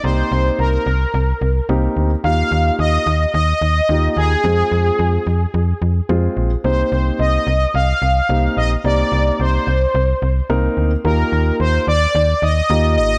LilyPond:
<<
  \new Staff \with { instrumentName = "Analog polysynth" } { \time 4/4 \key c \minor \tempo 4 = 109 c''4 bes'2 r4 | f''4 ees''4 ees''4. aes'8~ | aes'2~ aes'8 r4. | c''4 ees''4 f''4. ees''8 |
d''4 c''2 r4 | bes'4 c''8 d''4 ees''4 ees''8 | }
  \new Staff \with { instrumentName = "Grand piano" } { \time 4/4 \key c \minor <bes c' ees' g'>4. r4. <bes c' ees' g'>8. r16 | <bes ees' f' g'>4. r4. <bes ees' f' g'>8. r16 | <aes c' f' aes'>4. r4. <aes c' f' aes'>8. r16 | <bes c' ees' g'>4. r4. <bes c' ees' g'>8. r16 |
<bes c' ees' g'>4. r4. <bes c' ees' bes'>8. r16 | <bes ees' f' g'>4. r4. <bes ees' f' g'>8. r16 | }
  \new Staff \with { instrumentName = "FM bass" } { \clef bass \time 4/4 \key c \minor c,8 c,8 c,8 c,8 c,8 c,8 c,8 d,8 | ees,8 ees,8 ees,8 ees,8 ees,8 ees,8 ees,8 ees,8 | f,8 f,8 f,8 f,8 f,8 f,8 f,8 bes,,8 | c,8 c,8 c,8 c,8 c,8 c,8 c,8 bes,,8 |
c,8 c,8 c,8 c,8 c,8 c,8 c,8 d,8 | ees,8 ees,8 ees,8 ees,8 ees,8 ees,8 ees,8 aes,,8 | }
>>